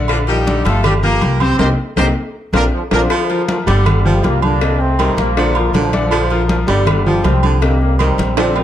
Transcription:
Already playing: A#1 D3 D4 D5
0.08 F3 D4 F4, cowbell, low agogo
0.27 F3 G3 D#4 F4 G4 A#4, high conga, low agogo
0.46 D3 D4 D5, cowbell, high conga
0.64 G1 F3 A3 F4 G4 A4, cowbell, high conga, low agogo
0.84 G3 D4 G4, cowbell, high conga, low conga, low agogo
1.03 F3 A#3 F4 G4 A#4, high conga, low conga
1.21 C2, cowbell, high conga, low agogo
1.40 C3 C4 G4 C5, high conga, low agogo
1.59 C2 A#3 C4 D#4 G4 A#4 C5, cowbell, high conga, high timbale
1.96 C2 A#3 C4 D#4 G4 A#4 C5, cowbell, high conga, high timbale
2.53 A#1 A#3 C4 D4 F4 A#4, cowbell, high conga, high timbale
2.74 D3 F3
2.91 A#1 D3 F3 A#3 C4 D4 F4 A#4, cowbell, high conga, high timbale
3.10 F3, cowbell, high conga, low agogo
3.30 F3 F4 A#4, high conga, low agogo
3.48 D3 F3 F4 A#4, cowbell, high conga
3.66 G1 D3 G3 D4 D5, cowbell, high conga, low agogo
3.86 cowbell, high conga, low conga, low agogo
4.05 F3 F4 G4, high conga, low conga
4.22 C2 F3 G3 A#3 F4 G4, cowbell, high conga, low agogo
4.41 D3 A#3 D4, high conga, low agogo
4.61 C3 C4 D#5, cowbell, high conga, low agogo
4.79 A3 C4, high conga
4.99 D#3 G3 G4 A#4, cowbell, high conga, low agogo
5.16 A#1 F3 A#3, cowbell, high conga, low agogo
5.37 D3 F3 D4 D5, cowbell, high conga
5.55 F3 F4 A#4, high conga, low agogo
5.72 A#1 D3 F3, cowbell, high conga, low timbale, low agogo
5.92 D3 F3 D4 D5, cowbell, high conga
6.11 F3, cowbell, low agogo
6.30 F3 F4 A#4, high conga, low agogo
6.49 D3 F3 F4 A#4, cowbell, high conga
6.67 G1 D3 G3 D4 D5, cowbell, high conga, low agogo
6.87 cowbell, high conga, low conga, low agogo
7.06 F3 F4 G4, high conga, low conga
7.23 C2 F3 G3 C4 F4 G4, cowbell, high conga, low timbale, low agogo
7.43 D3, high conga, low agogo
7.61 C3 G3 A#3 C4 D#5, cowbell, high conga, low agogo
7.80 G3 A#3, high conga
7.99 D#3 G3 C4 G4 A#4, cowbell, high conga, low agogo
8.18 A#1, cowbell, high conga, low agogo
8.37 D3 F3 C4 D4 D5, cowbell, high conga, high timbale
8.56 F3 F4 A#4, high conga, low timbale, low agogo

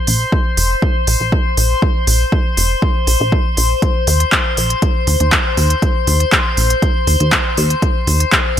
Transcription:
Already playing: C5 C6
0.07 A#1, open hi-hat
0.32 kick
0.57 F1, open hi-hat
0.82 kick
1.07 A#1, open hi-hat
1.20 A#1
1.32 kick
1.57 A#1, open hi-hat
1.82 kick
2.07 A#1, open hi-hat
2.32 kick
2.57 F1, open hi-hat
2.82 kick
3.07 A#1, open hi-hat
3.20 A#1
3.32 kick
3.57 A#1, open hi-hat
3.82 kick, closed hi-hat
4.07 D#2, open hi-hat
4.20 closed hi-hat
4.32 kick, clap, closed hi-hat
4.57 A#1, open hi-hat
4.70 closed hi-hat
4.82 kick, closed hi-hat
5.07 D#2, open hi-hat
5.20 D#2, closed hi-hat
5.32 kick, clap, closed hi-hat
5.57 D#2, open hi-hat
5.70 closed hi-hat
5.82 kick, closed hi-hat
6.07 D#2, open hi-hat
6.20 closed hi-hat
6.32 kick, clap, closed hi-hat
6.57 A#1, open hi-hat
6.70 closed hi-hat
6.82 kick, closed hi-hat
7.07 D#2, open hi-hat
7.20 D#2, closed hi-hat
7.32 kick, clap, closed hi-hat
7.57 D#2, open hi-hat
7.70 closed hi-hat
7.82 kick, closed hi-hat
8.07 D#2, open hi-hat
8.20 closed hi-hat
8.32 kick, clap, closed hi-hat

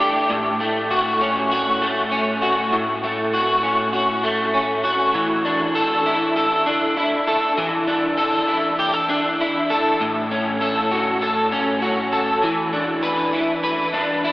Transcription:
Already playing: E3 A3 D4
0.00 G4
0.30 A2
0.60 A3
0.91 F#4
1.21 C#4
1.51 F#4
1.82 A3
2.12 C#4
2.42 F#4
2.72 A2
3.04 A3
3.34 F#4
3.63 C#4
3.93 F#4
4.23 A3
4.54 C#4
4.84 F#4
5.14 E3
5.45 D4
5.75 A4
6.06 E4
6.36 A4
6.66 D4
6.97 E4
7.27 A4
7.57 E3
7.87 D4
8.17 A4
8.48 E4
8.79 G4
8.93 A4
9.09 D4
9.41 E4
9.70 A4
10.00 A2
10.31 C#4
10.61 A4
10.91 F#4
11.22 A4
11.52 C#4
11.82 F#4
12.12 A4
12.43 E3
12.73 D4
13.03 B4
13.33 E4
13.64 B4
13.94 D4
14.24 E4

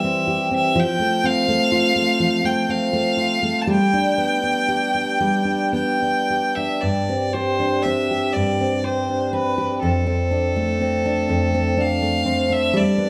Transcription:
Already playing: E3 G3 G4 E5
0.04 C4
0.27 G4
0.51 C4
0.56 E5
0.75 F3
0.79 G5
0.99 A3
1.24 C4 F5
1.48 A3
1.72 F4
1.96 A3
2.20 F3
2.44 A3 G5
2.69 C4 F5
2.93 A3
3.17 F4
3.43 A3
3.61 A5
3.67 G3 G5
3.93 D4
4.18 B3
4.43 D4
4.68 G4
4.94 D4
5.20 G3
5.45 D4
5.73 B3 G5
6.02 D4
6.30 G4
6.55 D4 E5
6.81 G2 D5
7.09 C4
7.33 G4 C5
7.60 D4
7.82 C4 E5
8.11 G4
8.33 G2 D5
8.60 C4
8.84 G4 C5
9.09 D4
9.33 C4 B4
9.58 G4
9.82 F2 A4
10.06 C4
10.31 D4
10.56 A3
10.81 C4
11.05 D4
11.29 F2
11.54 C4
11.77 D4 F5
12.02 A3
12.25 C4
12.50 D4 E5
12.73 G3 D5
12.98 B3

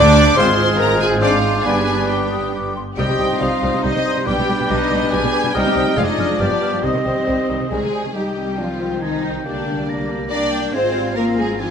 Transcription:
Already playing: D2 D3 D4 G4 D5 D6
0.35 G#1 G#2 G#3 C4 F4 G#4 C5 C6 F6
0.80 A#4 A#5
1.00 G#4 G#5
1.21 G#2 G#3 C4 D4 F4 C5 D5 F5 D6
1.65 G1 G2 G3 B3 D4 G#4 B4 D5 G#5
2.08 G4 G5 D6
2.31 D#6
2.55 D6
2.76 C6
2.96 C2 C3 G3 C4 D#4 G4 C5 D#5 G5 D#6
3.00 G2 G3 C5
3.08 C3 G3
3.19 C2 C3 G3 C5 D#6
3.30 C3 G3
3.40 C2 C3 G3 F4 C5 F5 D#6
3.62 C2 C3 G3 C5 D#6
3.73 C3 G3
3.82 C2 C3 G3 D#4 C5 D#5 D#6
3.95 C3 G3
4.05 G3 C5 D#6
4.16 C3 G3
4.26 B1 B2 G3 B3 D4 G4 B4 G5 D6
4.38 B2 G3
4.47 B1 B2 G3 B4 D6
4.59 B2 G3
4.69 B1 B2 G3 D#4 B4 D#5 D6
4.90 B1 B2 G3 B4 D6
5.02 B2 G3
5.12 B1 B2 G3 G#4 B4 G#5 D6
5.22 B2 G3
5.33 G3 B4 D6
5.44 B2 G3
5.54 C2 C3 G3 C4 D#4 G4 A#4 C5 D#5 G5 D#6
5.66 C3 G3
5.75 C2 C3 G3 C5 D#6
5.87 C3 G3
5.96 F1 F2 F3 G#3 D4 F4 G#4 D5 F5 F6
6.06 D#4 D#5
6.18 F1 F2 G#3 D5 F6
6.29 F2 G#3
6.38 G1 G2 F3 G3 B3 D4 G4 B4 D5 F6
6.50 G2 F3
6.61 G3 B4 F6
6.72 G2 F3
6.83 C2 C3 D#3 G3 C4 C5 D#5 D#6
6.94 C3 D#3
7.04 C2 C3 D#3 G3 C5 D#6
7.16 C3 D#3
7.26 C2 C3 D#3 G3 C5 D#6
7.49 C2 C3 D#3 G3 C5 D#6
7.60 C3 D#3
7.69 C2 C3 D#3 G3 G#3 G#4 C5 D#6
7.82 C3 D#3
7.93 G3 C5 D#6
8.04 C3 D#3
8.15 C2 D#3 G3 D#4 G4 D#5 G5
8.38 C4
8.57 F3 C4 D4 F4 C5
8.80 C4
9.01 D#3 D#4 G#5
9.24 G5
9.45 D3 G3 A#3 D4 G4 D5
9.68 G4
9.89 A#5
10.30 D4 D5 G5 A#5
10.51 G5
10.73 G#1 G#3 C4 F4 C5 F5 G#5
10.96 G3
11.16 F3 A#3 F4 A#4 A#5
11.38 G#3 G#4
11.58 F3 C4 D4 D#4 F4 G#5

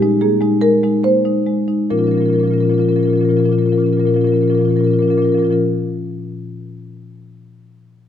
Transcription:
Already playing: G4
0.02 G#3 D#4
0.21 A#3 G#4
0.41 G#3 D#4
0.61 G#3 A#4
0.83 G#3 D#4
1.04 A#3 C5
1.25 G#3 D#4
1.46 G#3
1.68 G#3 D#4
1.90 A#2 F3 C#4 F4 A#4
1.98 A#2 F3 C#4 F4 A#4
2.04 C#4 F4 A#4
2.08 A#2 F3 A#4
2.14 F3 C#4 F4 A#4
2.20 A#2 C#4 F4
2.25 F3 C#4 F4 A#4
2.30 A#2 F3 A#4
2.36 C#4 F4
2.40 A#2 F3 A#4
2.44 C#4 F4 A#4
2.51 A#2 F3 C#4 F4 A#4
2.58 A#2 F3 F4 A#4
2.63 C#4 F4
2.67 A#2 F3 F4 A#4
2.72 C#4 A#4
2.78 A#2 F3 C#4 F4 A#4
2.85 F3 C#4 F4 A#4
2.90 A#2 F4
2.96 A#2 F3 C#4 F4 A#4
3.03 F3 C#4 A#4
3.07 A#2 F4 A#4
3.13 F3 C#4 F4
3.17 A#2 F3 C#4 A#4
3.23 F4 A#4
3.29 A#2 F3 C#4 F4 A#4
3.37 A#2 F3 C#4 F4 A#4
3.44 F3 C#4 F4 A#4
3.49 A#2 C#4 F4 A#4
3.55 A#2 F3 F4 A#4
3.62 F3 C#4 F4
3.66 A#2 C#4 A#4
3.72 F3 F4 A#4
3.77 A#2 C#4 F4 A#4
3.82 F3 C#4 F4
3.86 A#2 F3 A#4
3.92 C#4 F4 A#4
3.96 A#2 F3 F4 A#4
4.01 C#4
4.06 A#2 F3 C#4 F4 A#4
4.14 A#2 F3 C#4 F4 A#4
4.21 A#2 F3 C#4 F4 A#4
4.27 F4 A#4
4.32 A#2 F3 C#4 F4 A#4
4.41 A#2 F3 C#4 F4 A#4
4.48 A#2 F3 C#4 F4 A#4
4.55 C#4 F4 A#4
4.59 A#2 F3 A#4
4.65 F3 C#4 F4
4.70 A#2 C#4 F4 A#4
4.76 F3 C#4 F4 A#4
4.81 A#2 A#4
4.85 F3 C#4 F4
4.90 A#2 F3 F4 A#4
4.94 C#4
4.98 A#2 F3 C#4 F4 A#4
5.05 A#2 F4 A#4
5.10 F3 C#4 A#4
5.14 A#2 F3 F4 A#4
5.19 C#4 F4
5.25 A#2 F3 C#4 A#4
5.29 F4 A#4
5.34 A#2 F3 C#4 F4
5.39 F3 A#4
5.44 C#4 F4 A#4
5.50 A#2 F3 C#4 F4 A#4

